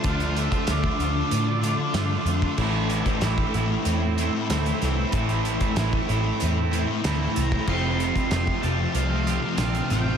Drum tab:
CC |----------------|x---------------|----------------|x---------------|
HH |xxxxx-x-x-x-x-x-|--xxx-x-x-x-xxx-|xxxxx-x-x-x-x-x-|--xxx-x-x-x-xxx-|
SD |----o-------o---|----o-------o-o-|----o-------o---|----o-------o-o-|
BD |o--o-o---------o|o--o-o----------|o--o-o---------o|o--o-o----------|